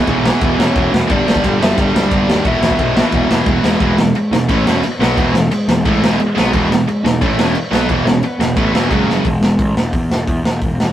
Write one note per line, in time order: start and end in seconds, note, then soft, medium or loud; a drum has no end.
0.00 0.87 B3 medium
0.00 1.53 B3 loud
0.07 0.29 B1 medium
0.07 0.24 E2 medium
0.07 0.25 B2 loud
0.07 0.25 E3 loud
0.07 0.55 G#4 medium
0.07 0.61 G#5 loud
0.07 kick loud
0.07 ride medium
0.25 0.41 E2 loud
0.25 0.40 B2 medium
0.25 0.40 E3 loud
0.25 snare loud
0.41 0.52 E1 loud
0.41 0.57 E2 medium
0.41 0.58 B2 medium
0.41 0.59 E3 loud
0.41 kick loud
0.41 ride medium
0.57 0.69 E1 medium
0.57 0.76 E2 medium
0.57 0.75 B2 medium
0.57 0.74 E3 loud
0.57 0.89 C#4 medium
0.57 0.90 C#5 loud
0.57 snare loud
0.75 0.86 E1 loud
0.75 0.91 E2 medium
0.75 0.92 B2 loud
0.75 0.92 E3 loud
0.75 kick loud
0.75 ride medium
0.92 1.03 E1 medium
0.92 1.08 E2 medium
0.92 1.09 B2 loud
0.92 1.09 E3 loud
0.92 snare loud
1.10 1.21 G1 loud
1.10 1.26 G2 medium
1.10 1.26 D3 medium
1.10 1.25 G3 loud
1.10 1.41 D4 medium
1.10 1.42 D5 loud
1.10 kick loud
1.10 ride medium
1.26 1.37 G1 loud
1.26 1.42 G2 medium
1.26 1.43 D3 medium
1.26 1.43 G3 medium
1.26 snare loud
1.35 kick loud
1.43 1.55 G1 loud
1.43 1.61 G2 medium
1.43 1.60 D3 loud
1.43 1.60 G3 loud
1.43 kick loud
1.43 ride medium
1.60 1.71 G1 loud
1.60 1.76 G2 medium
1.60 1.77 D3 loud
1.60 1.78 G3 loud
1.60 1.77 E4 medium
1.60 1.80 E5 medium
1.60 snare loud
1.78 1.88 G1 loud
1.78 1.94 G2 medium
1.78 1.93 D3 loud
1.78 1.93 G3 loud
1.78 2.26 D4 medium
1.78 2.28 D5 loud
1.78 kick loud
1.78 ride medium
1.94 2.05 D2 medium
1.94 2.10 G2 medium
1.94 2.10 D3 medium
1.94 2.11 G3 loud
1.94 snare loud
2.11 2.22 G1 loud
2.11 2.27 G2 loud
2.11 2.27 D3 loud
2.11 2.26 G3 loud
2.11 kick loud
2.11 ride medium
2.27 2.39 D#2 medium
2.27 2.44 G2 medium
2.27 2.44 D3 medium
2.27 2.44 G3 loud
2.27 2.45 D4 medium
2.27 2.46 D5 medium
2.27 snare loud
2.45 2.55 E1 loud
2.45 2.61 E2 loud
2.45 2.60 B2 loud
2.45 2.60 E3 loud
2.45 3.44 E4 medium
2.45 3.44 E5 loud
2.45 kick loud
2.45 ride medium
2.61 2.72 E1 loud
2.61 2.78 E2 medium
2.61 2.79 B2 medium
2.61 2.79 E3 medium
2.61 snare loud
2.70 kick medium
2.79 3.00 B1 medium
2.79 2.96 E2 medium
2.79 2.95 B2 loud
2.79 2.95 E3 loud
2.79 kick loud
2.79 ride medium
2.96 3.11 E2 medium
2.96 3.11 B2 medium
2.96 3.12 E3 loud
2.96 snare loud
3.12 3.24 E1 loud
3.12 3.30 E2 loud
3.12 3.30 B2 loud
3.12 3.29 E3 loud
3.12 kick loud
3.12 ride medium
3.30 3.40 E1 medium
3.30 3.45 E2 medium
3.30 3.46 B2 loud
3.30 3.46 E3 loud
3.30 snare loud
3.46 3.57 E1 loud
3.46 3.64 E2 medium
3.46 3.63 B2 loud
3.46 3.62 E3 loud
3.46 3.51 G#3 loud
3.46 3.52 G#4 medium
3.46 kick loud
3.46 ride medium
3.63 3.74 E1 medium
3.63 3.79 E2 medium
3.63 3.80 B2 medium
3.63 3.80 E3 medium
3.63 4.34 G#3 medium
3.63 4.28 G#4 medium
3.63 snare loud
3.80 3.96 E1 loud
3.80 3.97 E2 medium
3.80 3.98 B2 loud
3.80 3.98 E3 loud
3.80 kick loud
3.80 crash medium
3.97 4.13 E1 medium
3.97 4.12 E2 medium
3.97 4.12 B2 medium
3.97 snare loud
4.14 muted picked electric bass stroke soft
4.14 muted distorted electric guitar stroke medium
4.14 muted overdriven electric guitar stroke medium
4.14 crash medium
4.31 4.47 E1 medium
4.31 4.46 E2 medium
4.31 4.46 B2 medium
4.31 4.36 D#4 loud
4.31 4.38 D#5 medium
4.31 snare loud
4.48 4.65 A1 loud
4.48 4.65 A2 loud
4.48 4.65 E3 loud
4.48 4.66 A3 loud
4.48 4.83 C#4 loud
4.48 4.81 C#5 medium
4.48 kick loud
4.48 crash medium
4.65 4.81 E1 loud
4.65 4.82 E2 loud
4.65 4.83 B2 loud
4.65 4.83 E3 loud
4.65 snare loud
4.83 crash medium
4.99 5.15 B1 loud
4.99 5.17 B2 medium
4.99 5.17 F#3 medium
4.99 5.35 B3 loud
4.99 5.18 B3 loud
4.99 5.32 B4 medium
4.99 snare loud
5.17 5.33 E1 loud
5.17 5.33 E2 medium
5.17 5.34 B2 loud
5.17 5.34 E3 loud
5.17 kick loud
5.17 crash medium
5.34 5.50 E1 medium
5.34 5.48 E2 medium
5.34 5.48 B2 medium
5.34 5.51 A3 medium
5.34 5.50 A4 medium
5.34 snare loud
5.51 6.15 G#3 medium
5.51 6.16 G#4 medium
5.51 muted picked electric bass stroke soft
5.51 muted distorted electric guitar stroke medium
5.51 muted overdriven electric guitar stroke medium
5.51 crash medium
5.68 5.84 E1 medium
5.68 5.82 E2 medium
5.68 5.82 B2 medium
5.68 snare loud
5.85 6.01 A1 loud
5.85 6.02 A2 medium
5.85 6.02 E3 loud
5.85 6.02 A3 loud
5.85 kick loud
5.85 crash medium
6.01 6.17 E1 loud
6.01 6.19 E2 medium
6.01 6.19 B2 medium
6.01 6.19 E3 loud
6.01 snare loud
6.19 6.35 G#3 loud
6.19 6.35 G#4 medium
6.19 crash medium
6.36 6.52 B1 medium
6.36 6.53 B2 medium
6.36 6.53 F#3 loud
6.36 7.06 G#3 loud
6.36 6.53 B3 loud
6.36 7.00 G#4 medium
6.36 snare loud
6.53 6.69 E1 loud
6.53 6.69 E2 medium
6.53 6.69 B2 medium
6.53 6.71 E3 medium
6.53 kick loud
6.53 crash medium
6.70 6.86 E1 medium
6.70 6.83 E2 medium
6.70 6.84 B2 medium
6.70 snare loud
6.87 muted distorted electric guitar stroke medium
6.87 muted overdriven electric guitar stroke medium
6.87 muted picked electric bass stroke soft
6.87 crash medium
7.04 7.20 E1 medium
7.04 7.18 E2 medium
7.04 7.18 B2 medium
7.04 7.20 D#4 loud
7.04 7.20 D#5 medium
7.04 snare loud
7.20 7.37 A1 loud
7.20 7.38 A2 medium
7.20 7.38 E3 loud
7.20 7.38 A3 loud
7.20 7.55 C#4 loud
7.20 7.52 C#5 medium
7.20 kick loud
7.20 crash medium
7.38 7.54 E1 medium
7.38 7.54 E2 medium
7.38 7.55 B2 medium
7.38 7.55 E3 loud
7.38 snare loud
7.55 crash medium
7.71 7.87 B1 loud
7.71 7.88 B2 medium
7.71 7.89 F#3 medium
7.71 8.07 B3 medium
7.71 7.89 B3 loud
7.71 8.03 B4 medium
7.71 snare loud
7.88 8.04 E1 loud
7.88 8.05 E2 medium
7.88 8.05 B2 medium
7.88 8.06 E3 loud
7.88 kick loud
7.88 crash medium
8.05 8.21 E1 medium
8.05 8.19 E2 medium
8.05 8.19 B2 medium
8.05 8.23 C#4 medium
8.05 8.21 C#5 medium
8.05 snare loud
8.22 8.93 B3 medium
8.22 8.87 B4 medium
8.22 muted picked electric bass stroke soft
8.22 muted overdriven electric guitar stroke medium
8.22 muted distorted electric guitar stroke medium
8.22 crash medium
8.39 8.55 E1 medium
8.39 8.53 E2 medium
8.39 8.53 B2 medium
8.39 snare loud
8.56 8.72 A1 loud
8.56 8.73 A2 medium
8.56 8.73 E3 loud
8.56 8.74 A3 loud
8.56 kick loud
8.56 crash medium
8.73 8.89 E1 medium
8.73 8.90 E2 medium
8.73 8.91 B2 loud
8.73 8.91 E3 loud
8.73 snare loud
8.90 9.22 F#1 loud
8.90 9.24 F#2 loud
8.90 9.24 C#3 loud
8.90 9.24 F#3 loud
8.90 9.08 G#3 medium
8.90 9.07 G#4 medium
8.90 kick loud
8.90 crash medium
9.08 9.73 G#3 medium
9.08 9.72 G#4 medium
9.08 snare medium
9.25 9.40 E1 medium
9.25 kick loud
9.25 open hi-hat medium
9.41 9.56 E1 medium
9.41 snare loud
9.59 9.74 A1 medium
9.59 kick loud
9.59 open hi-hat medium
9.76 9.91 E1 medium
9.76 snare loud
9.93 10.08 E2 medium
9.93 kick loud
9.93 open hi-hat medium
10.10 10.25 E1 medium
10.10 snare loud
10.28 10.42 E2 medium
10.28 kick loud
10.28 open hi-hat medium
10.44 10.59 E1 medium
10.44 snare loud
10.62 10.77 E1 medium
10.62 kick loud
10.62 open hi-hat medium
10.79 10.93 E1 medium
10.79 snare loud